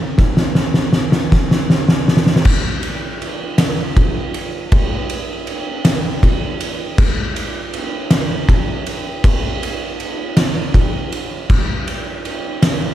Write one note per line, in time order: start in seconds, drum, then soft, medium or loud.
0.18 kick loud
0.18 snare medium
0.37 snare loud
0.55 snare medium
0.74 snare medium
0.93 snare loud
1.12 snare loud
1.32 kick medium
1.32 snare loud
1.51 snare loud
1.70 snare loud
1.89 snare loud
2.08 snare loud
2.17 snare loud
2.26 snare loud
2.36 snare loud
2.45 kick loud
2.45 crash loud
2.83 ride medium
3.22 ride medium
3.58 snare loud
3.58 ride loud
3.97 kick medium
3.97 ride medium
4.34 ride medium
4.72 kick loud
4.72 ride loud
5.10 ride medium
5.47 ride medium
5.85 snare loud
5.85 ride loud
6.23 kick medium
6.23 ride medium
6.61 ride medium
6.98 kick loud
6.98 crash loud
7.36 ride medium
7.74 ride medium
8.11 snare loud
8.11 ride loud
8.49 kick medium
8.49 ride medium
8.86 ride medium
9.24 kick loud
9.24 ride loud
9.63 ride medium
10.00 ride medium
10.37 snare loud
10.37 ride loud
10.74 kick medium
10.74 ride medium
11.12 ride medium
11.50 kick loud
11.50 crash loud
11.88 ride medium
12.25 ride medium
12.62 snare loud
12.62 ride loud